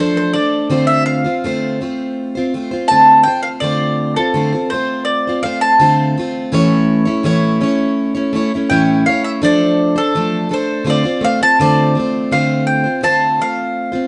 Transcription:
Already playing: steel-string acoustic guitar F3 A3 D4
0.00 steel-string acoustic guitar A4 C5, mandolin C5
0.17 mandolin C5
0.33 steel-string acoustic guitar A3 D4 A4 C5, mandolin D5
0.70 steel-string acoustic guitar D3 A3 C4 F4 C5
0.87 mandolin E5
1.06 mandolin F5
1.24 steel-string acoustic guitar C4 F4 C5
1.44 steel-string acoustic guitar D3 A3 C4 F4 C5
1.81 steel-string acoustic guitar A3 C4 F4 C5
2.35 steel-string acoustic guitar C4 F4 C5
2.54 steel-string acoustic guitar A3 C4 F4 C5
2.71 steel-string acoustic guitar C4 F4 C5
2.88 steel-string acoustic guitar D3 A3 C4, mandolin A5
2.92 steel-string acoustic guitar F4 C5
3.23 steel-string acoustic guitar A3 C4 F4, mandolin G5
3.28 steel-string acoustic guitar C5
3.43 mandolin F5
3.60 steel-string acoustic guitar D3 A3 C4 F4 C5, mandolin D5
4.16 steel-string acoustic guitar F4 C5, mandolin A4
4.21 steel-string acoustic guitar C4
4.34 steel-string acoustic guitar D3 A3 C4 F4 C5
4.52 steel-string acoustic guitar C4 F4 C5
4.70 steel-string acoustic guitar A3 C4, mandolin C5
4.74 steel-string acoustic guitar F4 C5
5.05 mandolin D5
5.27 steel-string acoustic guitar C4 F4 C5
5.43 steel-string acoustic guitar A3 C4 F4 C5, mandolin F5
5.61 mandolin A5
5.80 steel-string acoustic guitar D3 A3 C4 F4 C5
6.17 steel-string acoustic guitar A3 C4 F4 C5
6.52 steel-string acoustic guitar A2 E3 A3 C#4 E4 C#5
7.05 steel-string acoustic guitar A3 C#4 E4 C#5
7.23 steel-string acoustic guitar A2 E3 A3 C#4 E4 C#5
7.61 steel-string acoustic guitar A3 C#4 E4 C#5
8.15 steel-string acoustic guitar A3 C#4 E4 C#5
8.33 steel-string acoustic guitar A3 C#4 E4 C#5
8.54 steel-string acoustic guitar A3 C#4 E4 C#5
8.70 steel-string acoustic guitar A2 E3 A3 C#4 E4 C#5, mandolin G5
9.06 steel-string acoustic guitar A3 C#4 E4 C#5, mandolin F5
9.24 mandolin E5
9.42 steel-string acoustic guitar F3 A3 D4 A4 C5, mandolin D5
9.96 steel-string acoustic guitar D4 A4 C5, mandolin A4
10.15 steel-string acoustic guitar F3 A3 D4 A4 C5
10.49 steel-string acoustic guitar A3 D4 A4 C5
10.54 mandolin C5
10.84 steel-string acoustic guitar D3 A3 C4 F4 C5
10.90 mandolin D5
11.04 steel-string acoustic guitar C4 F4 C5
11.21 steel-string acoustic guitar A3 C4 F4 C5, mandolin F5
11.41 steel-string acoustic guitar C4 F4 C5, mandolin A5
11.60 steel-string acoustic guitar D3 A3 C4 F4 C5, mandolin D5
11.95 steel-string acoustic guitar A3 C4 F4
12.00 steel-string acoustic guitar C5
12.31 steel-string acoustic guitar D3 A3 C4 F4 C5, mandolin F5
12.67 mandolin G5
12.84 steel-string acoustic guitar C4 F4 C5
13.01 steel-string acoustic guitar D3 A3 C4 F4 C5, mandolin A5
13.39 steel-string acoustic guitar A3 C4 F4 C5, mandolin F5
13.92 steel-string acoustic guitar C4 F4 C5

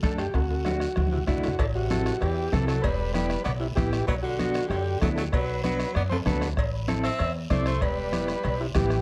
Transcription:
0.03 upright bass F#2, clean electric guitar A3 D4 A4, transistor combo organ A4, bombo low, bombo rim, high conga, high timbale, short guiro
0.18 transistor combo organ G4, bombo rim, high timbale, short guiro
0.34 upright bass D2, transistor combo organ F#4, bombo low, bombo rim, high timbale, long guiro
0.51 high timbale
0.65 clean electric guitar A3 D4 F#4, bombo rim, high conga, low timbale, short guiro
0.80 bombo rim, short guiro
0.96 upright bass D2, bombo rim, high conga, low timbale, long guiro
1.07 high conga
1.12 tenor saxophone C3, transistor combo organ E4
1.18 low conga
1.27 upright bass F#2, tenor saxophone D3, clean electric guitar A3 D4 E4, transistor combo organ F#4, bombo low, bombo rim, low conga, short guiro
1.38 low conga
1.43 bombo rim, low timbale, short guiro
1.48 low conga
1.59 upright bass A1, tenor saxophone E3, transistor combo organ A4, bombo low, bombo rim, cowbell, long guiro
1.75 tenor saxophone C3, transistor combo organ F#4
1.90 clean electric guitar C4 E4 A4, bombo rim, high conga, short guiro
2.06 bombo rim, short guiro
2.20 upright bass E2, tenor saxophone E3, transistor combo organ G4, bombo rim, cowbell, long guiro
2.51 upright bass C2, tenor saxophone E3, clean electric guitar C4 E4 A4, transistor combo organ A4, bombo low, bombo rim, high conga, short guiro
2.67 tenor saxophone F#3, transistor combo organ A4, bombo rim, short guiro
2.82 upright bass E1, tenor saxophone G3, transistor combo organ B4, bombo low, bombo rim, cowbell, long guiro
3.13 tenor saxophone G3, clean electric guitar B3 E4 G4, transistor combo organ B4, bombo rim, high conga, short guiro
3.30 bombo rim, short guiro
3.44 upright bass B1, tenor saxophone B3, transistor combo organ D5, bombo rim, cowbell, long guiro
3.60 tenor saxophone C3, transistor combo organ E4
3.75 upright bass A1, tenor saxophone E3, clean electric guitar B3 E4 G4, transistor combo organ G4, bombo low, bombo rim, high conga, low conga, short guiro
3.93 bombo rim, short guiro
4.07 upright bass B1, tenor saxophone F#3, transistor combo organ B4, bombo low, bombo rim, cowbell, long guiro
4.23 tenor saxophone D3, transistor combo organ F#4
4.39 clean electric guitar B3 D4 F#4, bombo rim, high conga, short guiro
4.54 bombo rim, short guiro
4.69 upright bass F#2, tenor saxophone D3, transistor combo organ G4, bombo rim, cowbell, long guiro
5.01 upright bass D2, tenor saxophone F#3, clean electric guitar B3 D4 E4, transistor combo organ A4, bombo low, bombo rim, high conga, low timbale, short guiro
5.16 tenor saxophone F#3, transistor combo organ A4, bombo rim, short guiro
5.32 upright bass B1, tenor saxophone F#3, transistor combo organ B4, bombo low, bombo rim, cowbell, long guiro
5.64 tenor saxophone F#3, clean electric guitar B3 D4 F#4, transistor combo organ B4, bombo rim, high conga, short guiro
5.80 bombo rim, short guiro
5.95 upright bass F#2, tenor saxophone B3, transistor combo organ D5, bombo rim, cowbell, long guiro
6.10 tenor saxophone A3, transistor combo organ C5, high conga, high timbale
6.26 upright bass D2, tenor saxophone F#3, clean electric guitar B3 D4 A4, transistor combo organ B4, bombo low, bombo rim, high conga, low conga, high timbale, short guiro
6.42 bombo rim, low timbale, short guiro
6.57 upright bass A1, bombo low, bombo rim, cowbell, long guiro
6.88 clean electric guitar C4 E4 A4, bombo rim, high conga, short guiro
7.03 tenor saxophone C4, transistor combo organ E5, bombo rim, short guiro
7.19 upright bass E2, bombo rim, cowbell, long guiro
7.50 upright bass C2, tenor saxophone A3, clean electric guitar C4 E4 C5, transistor combo organ D5, bombo low, bombo rim, high conga, short guiro
7.66 tenor saxophone A3, transistor combo organ C5, bombo rim, short guiro
7.81 upright bass E1, tenor saxophone G3, transistor combo organ B4, bombo low, bombo rim, cowbell, long guiro
8.12 clean electric guitar B3 E4 G4, bombo rim, high conga, short guiro
8.28 bombo rim, short guiro
8.43 upright bass B1, bombo rim, cowbell, long guiro
8.60 tenor saxophone C3, transistor combo organ E4
8.75 upright bass A1, tenor saxophone E3, clean electric guitar B3 E4 G4, transistor combo organ G4, bombo low, bombo rim, high conga, low conga, low timbale, short guiro
8.90 bombo rim, short guiro

